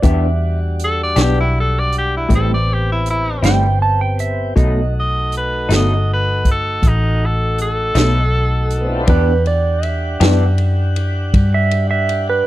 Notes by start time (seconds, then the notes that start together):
0.02 E2 E3 G3 B3 D4 F#4 G4 E5, kick, closed hi-hat
0.79 closed hi-hat
0.84 A4
1.03 D5
1.16 B1 E3 B3 D4 G4, snare, closed hi-hat
1.22 G4
1.40 E4
1.60 A4
1.79 D5
1.92 closed hi-hat
1.98 G4
2.16 E4
2.29 A1 A2 G3 B3 C4 E4 G4, kick, closed hi-hat
2.35 A4
2.54 D5
2.73 G4
2.92 E4
3.06 closed hi-hat
3.10 E4
3.42 G1 A2 G3 C4 E4 G5, snare, closed hi-hat
3.82 A5
4.01 G5
4.19 E5, closed hi-hat
4.56 B1 B2 F#3 A3 D#4 F#4 D#5, kick, closed hi-hat
5.00 D#5
5.32 closed hi-hat
5.37 B4
5.69 G1 B2 F#3 A3 D#4, snare, closed hi-hat
5.76 D#5
6.13 B4
6.45 kick, closed hi-hat
6.51 A4
6.82 A1, kick, closed hi-hat
6.88 D#4
7.26 A4
7.58 A4, closed hi-hat
7.95 B1 B2 F#3 A3 D#4, snare, closed hi-hat
8.70 closed hi-hat
8.79 A3 B3
8.84 C4 D4
8.90 E4 F4
8.95 G4 A4
9.00 B4 C5
9.06 E2 E3 B3 D4 G4 B4 D5 F#5, kick, ride
9.46 D5, ride
9.83 E5, ride
10.20 F#2 E3 B3 D4 G4, snare, ride
10.58 ride
10.96 ride
11.34 G2, kick, ride
11.54 E5
11.71 ride
11.91 E5
12.09 ride
12.30 B4